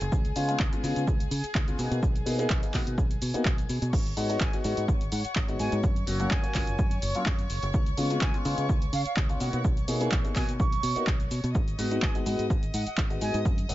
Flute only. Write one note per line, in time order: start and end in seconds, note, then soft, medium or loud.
4.41 4.55 G#5 medium
5.12 5.20 F#5 medium
5.24 5.32 F#5 medium
5.59 5.74 G#5 medium
6.31 6.98 G#5 medium
8.21 8.36 G#5 medium
8.93 9.01 F5 medium
9.05 9.13 F5 medium
9.40 9.49 F#5 medium
9.53 9.60 F#5 medium
10.36 10.50 G#5 loud
10.60 11.07 C#6 medium
12.02 12.17 G#5 medium
12.74 12.82 F#5 medium
12.86 12.94 F#5 medium
13.21 13.36 G#5 medium